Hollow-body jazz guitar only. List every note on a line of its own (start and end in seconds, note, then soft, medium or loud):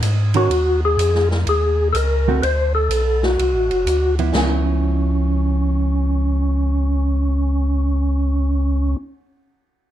0.35 0.49 D#3 medium
0.35 0.50 C#4 medium
0.35 0.50 F#4 medium
0.35 0.50 A#4 medium
2.28 2.42 D3 medium
2.28 2.42 A3 medium
2.28 2.42 C4 medium
2.28 2.42 F#4 medium
4.19 4.32 F3 medium
4.19 4.34 B3 medium
4.19 4.34 E4 medium
4.33 9.14 F3 medium
4.39 9.20 B3 medium
4.45 9.25 E4 medium